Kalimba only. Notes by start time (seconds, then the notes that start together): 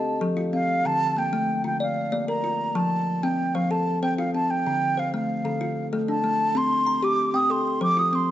Already playing: A4
0.21 F3 A4
0.37 F4
0.53 C4
0.85 D3
1.17 A#3
1.33 A3
1.64 D3 F4
1.80 D5
2.12 A#3 D5
2.28 A#4
2.44 F4
2.75 F3
3.23 C4
3.55 F3 C5
3.71 A4
4.03 C4 C5
4.18 F4
4.35 C4
4.66 D3
4.97 C5
5.14 A3
5.45 D3 A4
5.61 F4
5.93 A3 A4
6.08 D4
6.24 A3
6.55 C4
6.86 A#5
7.02 G4
7.34 C4 G5
7.50 A4
7.81 F3 C5
7.97 F4
8.13 C4